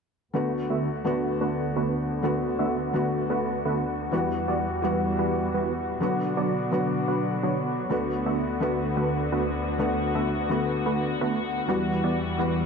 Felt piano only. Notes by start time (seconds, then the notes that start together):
0.34 D3 A3 B3 F#4
1.04 D3 A3 B3 F#4
2.23 D3 A3 B3 F#4
2.93 D3 A3 B3 F#4
4.11 E3 G3 B3 F#4
4.82 E3 G3 B3 F#4
6.00 D3 F#3 B3 F#4
6.71 D3 F#3 B3 F#4
7.89 D3 A3 B3 F#4
8.60 D3 A3 B3 F#4
9.78 D3 A3 B3 F#4
10.49 D3 A3 B3 F#4
11.67 E3 G3 B3 F#4
12.38 E3 G3 B3 F#4